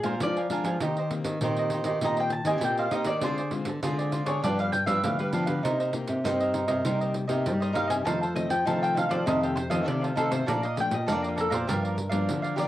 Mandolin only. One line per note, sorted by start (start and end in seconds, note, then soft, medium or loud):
0.06 0.20 C5 medium
0.23 0.41 D5 medium
2.05 2.18 A#5 medium
2.20 2.32 G5 medium
2.32 2.46 A5 medium
2.47 2.62 G#5 medium
2.64 2.78 G5 medium
2.79 2.93 F5 medium
2.92 3.06 D#5 medium
3.07 3.22 D5 medium
3.24 3.80 C5 medium
4.26 4.42 C#5 medium
4.44 4.58 D5 medium
4.60 4.72 F5 medium
4.72 4.86 G5 medium
4.87 5.02 E5 medium
5.04 5.19 F5 medium
5.20 5.29 B4 medium
7.62 7.76 D#5 medium
7.76 7.90 F5 medium
7.90 8.05 G#5 medium
8.05 8.20 A5 loud
8.23 8.35 C5 medium
8.36 8.50 D#5 medium
8.50 8.65 G5 medium
8.67 8.81 A5 medium
8.83 8.97 G5 medium
8.98 9.12 F5 medium
9.11 9.26 D5 medium
9.28 9.42 D#5 medium
9.43 9.57 G4 medium
9.56 9.71 C5 medium
9.71 9.86 D#5 medium
9.88 10.02 D5 medium
10.04 10.18 F4 medium
10.18 10.31 A4 medium
10.32 10.47 C5 medium
10.49 10.63 D5 medium
10.65 10.78 D#5 medium
10.80 10.94 G5 loud
10.94 11.08 D#5 medium
11.12 11.25 D5 medium
11.28 11.40 F4 medium
11.40 11.54 A4 medium
11.54 11.68 C5 medium
11.71 12.26 A#4 medium
12.59 12.68 D5 medium